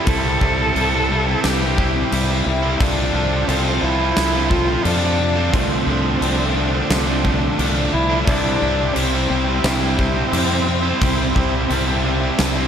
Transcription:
Already playing: analog synth pad E4 G4 G5
0.06 fingered electric bass C2, overdriven electric guitar C3 G3 C4 E4, cello A4, analog synth pad B4, kick, crash
0.41 fingered electric bass C2, overdriven electric guitar C3 G3 C4 E4, kick
0.75 fingered electric bass C2, overdriven electric guitar C3 G3 C4 E4, crash
0.93 overdriven electric guitar G3 C4 E4
1.09 overdriven electric guitar C3 G3 C4 E4
1.26 overdriven electric guitar G3 C4 E4
1.43 fingered electric bass C2, cello G4, snare, crash
1.61 overdriven electric guitar G3 C4 E4
1.78 overdriven electric guitar C3 G3 C4 E4, kick
1.94 overdriven electric guitar G3 C4 E4
2.11 fingered electric bass C2, overdriven electric guitar C3 G3 C4 E4, crash
2.29 overdriven electric guitar G3 C4 E4
2.45 fingered electric bass C2, overdriven electric guitar C3 G3 C4 E4, cello E4, muted overdriven electric guitar stroke
2.62 overdriven electric guitar G3 C4 E4
2.79 fingered electric bass C2, overdriven electric guitar C3 F3 C4 F4 A4, analog synth pad F3 A4 C5, cello D4, kick, crash
3.14 fingered electric bass C2, overdriven electric guitar F3 C4 F4 A4
3.47 fingered electric bass C2, overdriven electric guitar C3 F3 C4 F4 A4, cello C4, crash
3.65 overdriven electric guitar C4 F4 A4
3.82 fingered electric bass C2, overdriven electric guitar F3 C4 F4 A4, cello E4
4.00 overdriven electric guitar C4 F4 A4
4.17 fingered electric bass C2, snare, crash
4.34 overdriven electric guitar C4 F4 A4
4.50 overdriven electric guitar F3 C4 F4, cello F4, kick
4.54 overdriven electric guitar A4
4.68 overdriven electric guitar C4 F4 A4
4.83 fingered electric bass F2, overdriven electric guitar C3 F3 C4 F4, cello D4, crash
4.88 overdriven electric guitar A4
5.01 overdriven electric guitar C4 F4 A4
5.18 overdriven electric guitar F3 C4 F4, muted overdriven electric guitar stroke
5.22 overdriven electric guitar A4
5.36 overdriven electric guitar C4 F4 A4
5.52 fingered electric bass C2, overdriven electric guitar D3 F3 A3, cello C4, analog synth pad D4 A4 D5, kick, crash
5.57 overdriven electric guitar D4
5.87 fingered electric bass C2, overdriven electric guitar D3 F3 A3
5.91 overdriven electric guitar D4
6.21 fingered electric bass C2, overdriven electric guitar D3 F3 A3 D4, crash
6.38 overdriven electric guitar F3 A3 D4
6.56 overdriven electric guitar D3 F3 A3 D4
6.73 overdriven electric guitar F3 A3 D4
6.90 fingered electric bass C2, cello C4, snare, crash
7.07 overdriven electric guitar F3 A3 D4
7.24 overdriven electric guitar D3 F3 A3 D4, kick
7.41 overdriven electric guitar F3 A3 D4
7.58 fingered electric bass C2, overdriven electric guitar D3 F3 A3 D4, crash
7.75 overdriven electric guitar F3 A3 D4
7.92 fingered electric bass C2, overdriven electric guitar D3 F3 A3 D4, cello E4, muted overdriven electric guitar stroke
8.09 overdriven electric guitar F3 A3 D4
8.27 fingered electric bass C2, overdriven electric guitar C3 G3 C4 E4, cello D4, analog synth pad E4 G4 G5, kick, crash
8.60 fingered electric bass C2, overdriven electric guitar C3 G3 C4 E4
8.95 fingered electric bass C2, overdriven electric guitar C3 G3 C4 E4, cello C4, crash
9.11 overdriven electric guitar G3 C4 E4
9.29 fingered electric bass C2, overdriven electric guitar C3 G3 C4 E4
9.46 overdriven electric guitar G3 C4 E4
9.63 fingered electric bass C2, cello C4, snare, crash
9.80 overdriven electric guitar G3 C4 E4
9.97 overdriven electric guitar C3 G3 C4 E4, kick
10.14 overdriven electric guitar G3 C4 E4
10.31 fingered electric bass F2, overdriven electric guitar C3 G3 C4 E4, crash
10.49 overdriven electric guitar G3 C4 E4
10.66 overdriven electric guitar C3 G3 C4 E4, muted overdriven electric guitar stroke
10.83 overdriven electric guitar G3 C4 E4
11.00 fingered electric bass C2, overdriven electric guitar C3 G3 C4 E4, analog synth pad A5, kick, crash
11.34 fingered electric bass C2, overdriven electric guitar C3 G3 C4 E4, kick
11.69 fingered electric bass C2, overdriven electric guitar C3 G3 C4 E4, crash
11.86 overdriven electric guitar G3 C4 E4
12.03 overdriven electric guitar C3 G3 C4 E4
12.20 overdriven electric guitar G3 C4 E4
12.39 fingered electric bass C2, snare, crash
12.54 overdriven electric guitar G3 C4 E4

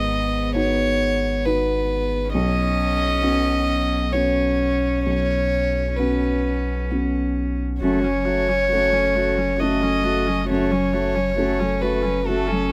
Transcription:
Already playing: sub bass G#1, felt piano G#2, cello B3, violin D#5
0.55 felt piano B3 D#4 F#4, violin C#5
1.45 felt piano B3 D#4 F#4, violin B4
2.33 felt piano B1, sub bass B1, cello C#4, violin D#5
3.22 felt piano B3 C#4 F#4
4.13 felt piano B3 C#4 F#4, cello C#4, violin C#5
5.05 felt piano B1, violin C#5
5.96 felt piano B3 C#4 F#4, cello C#4, violin B4
6.91 felt piano B3 C#4 F#4
7.81 sub bass F#1, felt piano F#2, cello A3, viola F#4, violin C#5
8.02 cello F#3, viola C#4
8.25 cello A3, viola F#4
8.48 cello F#3, viola C#4
8.71 cello A3, felt piano A3 C#4 F#4, viola F#4
8.91 cello F#3, viola C#4
9.15 cello A3, viola F#4
9.37 cello F#3, viola C#4
9.60 felt piano A3 C#4 F#4, cello A3, viola F#4, violin D#5
9.82 cello F#3, viola C#4
10.04 cello A3, viola F#4
10.27 cello F#3, viola C#4
10.48 felt piano F#2, cello A3, viola F#4, violin C#5
10.71 cello F#3, viola C#4
10.93 cello A3, viola F#4
11.15 cello F#3, viola C#4
11.38 felt piano A3 C#4 F#4, cello A3, viola F#4
11.60 cello F#3, viola C#4
11.81 cello A3, viola F#4, violin B4
12.03 cello F#3, viola C#4
12.26 felt piano A3 C#4 F#4, cello A3, viola F#4, violin A4
12.48 viola C#4
12.52 cello F#3

